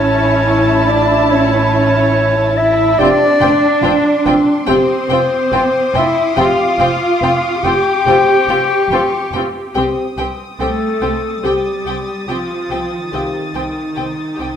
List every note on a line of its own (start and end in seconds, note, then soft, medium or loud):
0.00 2.95 A1 medium
0.00 0.88 C#4 medium
0.00 2.95 E4 medium
0.00 0.42 B4 medium
0.00 0.90 C#5 loud
0.00 2.95 A5 medium
0.00 1.18 E6 soft
0.00 1.18 F6 soft
0.48 2.96 C#6 soft
0.88 1.30 D4 medium
0.88 1.32 D5 medium
1.18 2.53 E6 soft
1.29 1.61 C#4 medium
1.29 2.57 C#4 medium
1.29 1.61 E4 medium
1.29 2.59 C#5 loud
2.56 2.98 E4 medium
2.56 3.00 E5 loud
2.98 3.07 F1 medium
2.98 3.30 C4 medium
2.98 3.08 C4 medium
2.98 4.68 D4 loud
2.98 3.09 F4 medium
2.98 3.30 G4 medium
2.98 4.40 D5 loud
2.98 3.07 G5 medium
2.98 9.29 C6 medium
3.41 3.49 F1 medium
3.41 3.50 C4 medium
3.41 3.49 F4 medium
3.41 3.49 G5 medium
3.83 3.91 F1 medium
3.83 3.92 C4 medium
3.83 3.91 F4 medium
3.83 3.91 G5 medium
3.83 7.93 D6 medium
4.26 4.34 F1 medium
4.26 4.34 C4 medium
4.26 4.34 F4 medium
4.26 4.34 G5 medium
4.67 4.77 F1 medium
4.67 4.75 C4 medium
4.67 5.92 C4 medium
4.67 5.00 C4 medium
4.67 4.76 F4 medium
4.67 4.99 G4 medium
4.67 5.97 C5 medium
4.67 4.75 G5 medium
4.67 8.14 D#6 medium
5.10 5.19 F1 medium
5.10 5.18 C4 medium
5.10 5.20 F4 medium
5.10 5.18 G5 medium
5.52 5.61 F1 medium
5.52 5.60 C4 medium
5.52 5.61 F4 medium
5.52 5.61 G5 medium
5.94 6.03 F1 medium
5.94 6.02 C4 medium
5.94 6.37 E4 medium
5.94 6.05 F4 medium
5.94 6.39 E5 loud
5.94 6.03 G5 medium
6.36 6.45 F1 medium
6.36 6.68 C4 medium
6.36 6.45 C4 medium
6.36 7.61 F4 medium
6.36 6.46 F4 medium
6.36 6.68 G4 medium
6.36 7.66 F5 medium
6.36 6.44 G5 medium
6.79 6.87 F1 medium
6.79 6.88 C4 medium
6.79 6.89 F4 medium
6.79 6.88 G5 medium
7.22 7.31 F1 medium
7.22 7.30 C4 medium
7.22 7.31 F4 medium
7.22 7.31 G5 medium
7.64 7.72 F1 medium
7.64 7.73 C4 medium
7.64 7.73 F4 medium
7.64 9.76 G4 medium
7.64 7.72 G5 soft
7.64 9.75 G5 medium
7.93 9.29 C#6 medium
8.05 8.14 F1 medium
8.05 8.37 C4 medium
8.05 8.14 C4 medium
8.05 8.17 F4 medium
8.05 8.37 G4 medium
8.05 10.56 C5 medium
8.05 8.15 G5 medium
8.14 9.29 D6 medium
8.48 8.56 F1 soft
8.48 8.58 C4 medium
8.48 8.58 F4 soft
8.48 8.57 G5 medium
8.89 8.97 F1 medium
8.89 9.00 C4 medium
8.89 9.00 G5 medium
8.93 9.01 F4 medium
9.32 9.40 F1 medium
9.32 9.43 C4 medium
9.32 9.41 G5 soft
9.37 9.45 F4 medium
9.75 9.83 C2 medium
9.75 10.06 C4 medium
9.75 9.84 C4 medium
9.75 10.06 G4 medium
9.75 9.86 G4 medium
9.75 9.83 G5 medium
9.75 14.56 D#6 soft
10.17 10.25 C2 medium
10.17 10.27 C4 soft
10.17 10.27 G4 soft
10.17 10.26 G5 soft
10.58 10.67 C2 medium
10.58 11.40 A3 medium
10.58 10.68 C4 soft
10.58 10.69 G4 medium
10.58 11.46 A4 medium
10.58 10.68 G5 soft
10.58 14.56 A6 soft
11.01 11.09 C2 soft
11.01 11.10 C4 soft
11.01 11.11 G4 soft
11.01 11.10 G5 soft
11.43 11.52 C2 soft
11.43 12.29 G3 soft
11.43 11.75 C4 soft
11.43 11.52 C4 soft
11.43 11.52 G4 soft
11.43 11.75 G4 soft
11.43 12.28 G4 medium
11.43 11.53 G5 soft
11.85 11.93 C2 soft
11.85 11.96 C4 soft
11.85 11.94 G4 soft
11.85 11.95 G5 soft
12.27 12.35 C2 soft
12.27 13.13 F3 soft
12.27 12.38 C4 soft
12.27 13.14 F4 medium
12.27 12.37 G4 soft
12.27 12.37 G5 soft
12.70 12.78 C2 soft
12.70 12.80 C4 soft
12.70 12.78 G4 soft
12.70 12.79 G5 soft
13.12 13.21 C2 soft
13.12 14.56 D#3 soft
13.12 13.44 C4 soft
13.12 13.21 C4 soft
13.12 14.56 D#4 soft
13.12 13.20 G4 soft
13.12 13.44 G4 soft
13.12 14.56 F5 soft
13.12 13.21 G5 soft
13.54 13.62 C2 soft
13.54 13.64 C4 soft
13.54 13.62 G4 soft
13.54 13.63 G5 soft
13.96 14.05 C2 soft
13.96 14.06 C4 soft
13.96 14.04 G4 soft
13.96 14.04 G5 soft
14.36 14.47 C2 soft
14.36 14.47 C4 soft
14.36 14.44 G4 soft
14.36 14.48 G5 soft